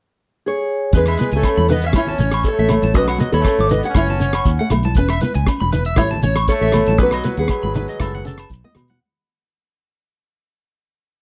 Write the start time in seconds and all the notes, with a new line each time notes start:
0.46 G#4 C#5
0.93 E2 G#3 C#4 G#4 B4, kick, closed hi-hat, shekere
0.97 B4
1.06 E5, cross-stick, low agogo
1.18 B3 B4, closed hi-hat, high conga, shekere
1.32 C#2 A3 G#5, closed hi-hat
1.36 A4 C#5
1.43 C#4, kick, cross-stick, closed hi-hat, low agogo, shekere
1.57 E2 B5, high conga
1.68 D#4 B4 D#5, closed hi-hat, low conga, shekere
1.74 B3
1.82 C#5 E5, closed hi-hat
1.86 C#4 E5
1.93 A1 C#5, kick, cross-stick, closed hi-hat, high conga, low agogo, shekere
1.97 E4
2.07 A5, low conga
2.18 A1 C#4 C#5, closed hi-hat, shekere
2.31 C#6, cross-stick, closed hi-hat, low agogo, shekere
2.43 A4, kick, closed hi-hat, shekere
2.48 A3 C#5
2.59 A1 A3 E5
2.69 A3, cross-stick, closed hi-hat, low conga, low agogo, shekere
2.82 A1 A5, closed hi-hat, high conga
2.94 B1 C#4 F#4 B4 D#5, kick, closed hi-hat, shekere
3.01 F#3
3.08 F#5, cross-stick, low agogo
3.19 B3 D#5, closed hi-hat, high conga, shekere
3.32 D#2 A4 C#5 B5, closed hi-hat
3.40 A3
3.44 C#4, kick, cross-stick, closed hi-hat, low agogo, shekere
3.58 G#1 D6, high conga
3.69 D#4 B4 D#5, closed hi-hat, low conga, shekere
3.78 B3
3.83 C#5 F#5, closed hi-hat
3.90 C#4
3.95 F#1 E4 C#5, kick, cross-stick, closed hi-hat, high conga, low agogo, shekere
4.10 A5, low conga
4.20 C#4 C#5, closed hi-hat, shekere
4.33 C#6, cross-stick, closed hi-hat, low agogo, shekere
4.45 D#2, kick, closed hi-hat, shekere
4.59 A3 F#5
4.70 B1 A3, cross-stick, closed hi-hat, low conga, low agogo, shekere
4.83 A5, closed hi-hat, high conga
4.95 E1 C#4 B4, kick, closed hi-hat, shekere
5.09 E5, cross-stick, low agogo
5.21 B3 B4, closed hi-hat, high conga, shekere
5.35 C#2 G#5, closed hi-hat
5.47 C#4, kick, cross-stick, closed hi-hat, low agogo, shekere
5.60 E1 B5, high conga
5.72 D#4 B4, closed hi-hat, low conga, shekere
5.85 E5, closed hi-hat
5.96 A1 E4 C#5, kick, cross-stick, closed hi-hat, high conga, low agogo, shekere
6.11 A5, low conga
6.23 A1 C#4 C#5, closed hi-hat, shekere
6.36 C#6, cross-stick, closed hi-hat, low agogo, shekere
6.48 A3 A4 C#5, kick, closed hi-hat, shekere
6.61 A1 A3 E5
6.72 A3, cross-stick, closed hi-hat, low conga, low agogo, shekere
6.86 A1 A5, closed hi-hat, high conga
6.98 B1 C#4 B4, kick, closed hi-hat, shekere
7.02 F#3 F#4 B4
7.11 D#5, cross-stick, low agogo
7.24 B3 B4, closed hi-hat, high conga, shekere
7.37 D#2 G#4 B4 F#5, closed hi-hat
7.42 F#3
7.48 muted nylon-string guitar stroke, kick, cross-stick, closed hi-hat, low agogo, shekere
7.63 G#1 B5, high conga
7.74 D#4 B4, closed hi-hat, low conga, shekere
7.88 D#5, closed hi-hat, shekere
8.00 F#1 A4, muted nylon-string guitar stroke, kick, cross-stick, closed hi-hat, high conga, low agogo, shekere
8.15 F#5, low conga
8.25 C#4 A4, closed hi-hat, shekere
8.38 A5, cross-stick, closed hi-hat, low agogo
8.50 B1, kick, closed hi-hat, shekere
8.64 B3 D#5, high conga
8.75 B2 B3, cross-stick, closed hi-hat, low conga, low agogo, shekere
8.88 F#5, closed hi-hat, high conga, shekere